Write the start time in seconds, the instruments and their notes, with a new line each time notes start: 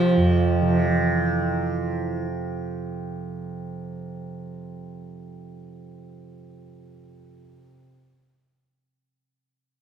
Already playing: tanpura F2 C3 F3, sitar F3
0.17 tanpura F2
0.62 tanpura C3
0.77 sitar E3